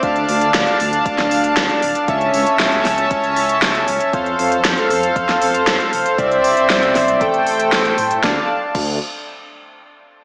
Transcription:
<<
  \new Staff \with { instrumentName = "Supersaw synth" } { \time 4/4 \key d \minor \tempo 4 = 117 <d' d'' f'' a''>1 | <cis' cis'' e'' a''>1 | <a' c'' f''>1 | <c' d'' e''>2 <a a' g''>2 |
<d' d'' f'' a''>8 r2. r8 | }
  \new Staff \with { instrumentName = "Detuned saw bass" } { \clef bass \time 4/4 \key d \minor d,8 d,8 d,16 r16 d,8 d,16 d,16 d,8 d,16 r16 d,,16 r16 | cis,8 cis,16 r16 cis,8 cis,8 cis,16 cis,16 cis,8 cis,8 cis,16 r16 | f,8 f,8 f,16 r16 f,8 f,16 f,16 f,8 f,16 r16 f,,16 r16 | c,8 c,16 r16 c,8 c,8 a,,16 a,,16 a,,8 a,,8 a,8 |
d,16 r8. d,8 r2 r8 | }
  \new DrumStaff \with { instrumentName = "Drums" } \drummode { \time 4/4 <hh bd>16 hh16 hho16 hh16 <hh sn>16 hh16 hho16 hh16 <hh bd>16 <hh sn>16 hho16 hh16 <hh sn>16 hh16 hho16 hh16 | <hh bd>16 hh16 hho16 hh16 <hh sn>16 hh16 <hho sn>16 hh16 <hh bd>16 hh16 hho16 hh16 <hh sn>16 hh16 hho16 hh16 | <hh bd>16 hh16 hho16 hh16 <hh sn>16 hh16 hho16 hh16 <hh bd>16 <hh sn>16 hho16 hh16 <hh sn>16 hh16 hho16 hh16 | <hh bd>16 hh16 hho16 hh16 <hh sn>16 hh16 <hho sn>16 hh16 <hh bd>16 hh16 hho16 hh16 <hh sn>16 hh16 hho16 hh16 |
<bd sn>4 <cymc bd>4 r4 r4 | }
>>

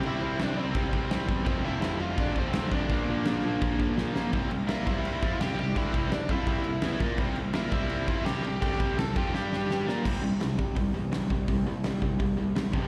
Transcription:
<<
  \new Staff \with { instrumentName = "Overdriven electric guitar" } { \time 4/4 \key c \mixolydian \tempo 4 = 168 << { e''4 d''8 c''4. r4 | c''8 e''4 f''8 d''8 c''4 d''8~ | d''2. r4 | r4 e''8 e''4. g''8 g''8 |
e''8.~ e''32 c''32 d''8 e''2 r8 | r4 e''8 e''4. g''8 g''8 | g''4 a''8 g''2 r8 | r1 |
r1 | } \\ { e'4 d'8 c'4. r4 | c'8 e'4 f'8 d'8 c'4 d'8~ | d'2. r4 | r4 e'8 e'4. g'8 g'8 |
e'4 d'8 e'2 r8 | r4 e'8 e'4. g'8 g'8 | g'4 a'8 g'2 r8 | r1 |
r1 | } >> }
  \new Staff \with { instrumentName = "Distorted electric guitar" } { \clef bass \time 4/4 \key c \mixolydian <c g c'>8 <c g c'>8 <c g c'>8 <c g c'>8 <c g c'>8 <c g c'>8 <c g c'>8 <c g c'>8 | <f, c f>8 <f, c f>8 <f, c f>8 <f, c f>8 <f, c f>8 <f, c f>8 <f, c f>8 <f, c f>8 | <bes, f bes>8 <bes, f bes>8 <bes, f bes>8 <bes, f bes>8 <bes, f bes>8 <bes, f bes>8 <bes, f bes>8 <bes, f bes>8 | <c g c'>8 <c g>8 <bes f' bes'>8 <c g c'>4 <f c' f'>8 <c g c'>8 <c g>8 |
<d a d'>8 <c g c'>8 <c g>8 <f c' f'>8 <c g c'>8 <c g>8 <e b e'>8 <bes f' bes'>8 | <c g c'>8 <c g>8 <bes f' bes'>8 <c g c'>4 <f c' f'>8 <c g c'>8 <c g>8 | <d a d'>8 <c g c'>8 <c g>8 <f c' f'>8 <g d' g'>4. <bes f' bes'>8 | <c g c'>8 <c g>8 <c g>8 <c g>8 <c g>8 <c g>8 <c g>8 <c g>8 |
<c g>8 <c g>8 <c g>8 <c g>8 <c g>8 <c g>8 <c g>8 <f, c f>8 | }
  \new Staff \with { instrumentName = "Distorted electric guitar" } { \clef bass \time 4/4 \key c \mixolydian <c g c'>8 <c g c'>8 <c g c'>8 <c g c'>8 <c g c'>8 <c g c'>8 <c g c'>8 <c g c'>8 | <f, c f>8 <f, c f>8 <f, c f>8 <f, c f>8 <f, c f>8 <f, c f>8 <f, c f>8 <f, c f>8 | <bes, f bes>8 <bes, f bes>8 <bes, f bes>8 <bes, f bes>8 <bes, f bes>8 <bes, f bes>8 <bes, f bes>8 <bes, f bes>8 | <c g c'>8 <c g>8 <bes f' bes'>8 <c g c'>4 <f c' f'>8 <c g c'>8 <c g>8 |
<d a d'>8 <c g c'>8 <c g>8 <f c' f'>8 <c g c'>8 <c g>8 <e b e'>8 <bes f' bes'>8 | <c g c'>8 <c g>8 <bes f' bes'>8 <c g c'>4 <f c' f'>8 <c g c'>8 <c g>8 | <d a d'>8 <c g c'>8 <c g>8 <f c' f'>8 <g d' g'>4. <bes f' bes'>8 | <c g c'>8 <c g>8 <c g>8 <c g>8 <c g>8 <c g>8 <c g>8 <c g>8 |
<c g>8 <c g>8 <c g>8 <c g>8 <c g>8 <c g>8 <c g>8 <f, c f>8 | }
  \new Staff \with { instrumentName = "Distorted electric guitar" } { \clef bass \time 4/4 \key c \mixolydian <c g c'>2. <c g c'>8 r8 | <f, c f>2.~ <f, c f>8 <f, c f>8 | <bes, f bes>2.~ <bes, f bes>8 <bes, f bes>8 | <c g c'>8 <c g>8 <bes f' bes'>8 <c g c'>4 <f c' f'>8 <c g c'>8 <c g>8 |
<d a d'>8 <c g c'>8 <c g>8 <f c' f'>8 <c g c'>8 <c g>8 <e b e'>8 <bes f' bes'>8 | <c g c'>8 <c g>8 <bes f' bes'>8 <c g c'>4 <f c' f'>8 <c g c'>8 <c g>8 | <d a d'>8 <c g c'>8 <c g>8 <f c' f'>8 <g d' g'>4. <bes f' bes'>8 | r1 |
r1 | }
  \new Staff \with { instrumentName = "Picked electric bass" } { \clef bass \time 4/4 \key c \mixolydian c,8 c,8 c,8 c,8 c,8 c,8 c,8 e,8 | f,,8 f,,8 f,,8 f,,8 bes,,8 f,,8 d,4 | bes,,8 bes,,8 bes,,8 bes,,8 bes,,8 bes,,8 bes,,8 bes,,8 | c,8 c,8 bes,8 c,4 f,8 c,8 c,8 |
d,8 c,8 c,8 f,8 c,8 c,8 e,8 bes,8 | c,8 c,8 bes,8 c,4 f,8 c,8 c,8 | d,8 c,8 c,8 f,8 g,4. bes,8 | c,8 c,8 c,8 c8 c,8 e,8 c,8 c,8 |
c,8 c,8 c,8 c,8 c,8 c,8 c,8 f,,8 | }
  \new DrumStaff \with { instrumentName = "Drums" } \drummode { \time 4/4 cymc4 <cymc sn>4 <cymc bd>8 bd8 <cymc sn>8 bd8 | <cymc bd>4 <cymc sn>4 <cymc bd>8 bd8 <cymc sn>8 bd8 | <cymc bd>4 <cymc sn>4 <cymc bd>8 bd8 sn8 sn8 | <cymc bd>8 cymc8 <cymc sn>8 <cymc bd>8 cymc8 <cymc bd>8 <cymc sn>8 cymc8 |
<cymc bd>8 <cymc bd>8 <cymc sn>8 <cymc bd>8 <cymc bd>8 cymc8 <cymc sn>8 <cymc bd>8 | <cymc bd>8 cymc8 <cymc sn>8 <cymc bd>8 cymc8 <cymc bd>8 <cymc sn>8 cymc8 | <cymc bd>8 <cymc bd>8 <cymc sn>8 <cymc bd>8 sn8 sn8 sn8 sn8 | <cymc bd>4 <hho sn>8 bd8 <hho bd>4 <hho sn>8 bd8 |
<hho bd>4 <hho sn>8 bd8 <hho bd>4 <hho sn>8 bd8 | }
>>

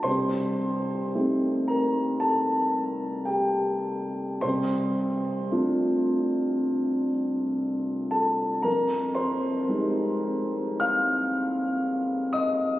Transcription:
\new Staff \with { instrumentName = "Grand piano" } { \time 4/4 \key c \dorian \tempo 4 = 57 << { <c'' c'''>4. <bes' bes''>8 <a' a''>4 <g' g''>4 | <c'' c'''>2~ <c'' c'''>8 r4 <a' a''>8 | <bes' bes''>8 <c'' c'''>4. <f'' f'''>4. <ees'' ees'''>8 | } \\ { c,4 <a c' ees' g'>2. | c,4 <a c' d' f'>2. | f,4 <aes c' ees' g'>2. | } >> }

